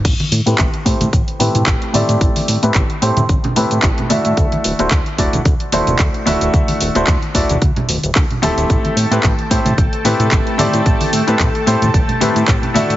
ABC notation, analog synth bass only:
X:1
M:4/4
L:1/16
Q:"Swing 16ths" 1/4=111
K:Ador
V:1 name="Analog synth bass" clef=bass
A,,, z A,, A,, A,,, z A,, A,, A,,, z A,, A,, A,,, z A,, A,, | A,,, z A,, A,, A,,, z A,, A,, A,,, z A,, A,, A,,, z A,, A,, | D,, z D,,, D,,, D,, z D,,, D,,, D,, z D,,, D,,, D,, z D,,, D,,, | D,, z D,,, D,,, D,, z D,,, D,,, D,, z D,,, D,,, D,, z D,,, D,,, |
A,,, z A,, A,, A,,, z A,, A,, A,,, z A,, A,, A,,, z A,, A,, | A,,, z A,, A,, A,,, z A,, A,, A,,, z A,, A,, A,,, z A,, A,, |]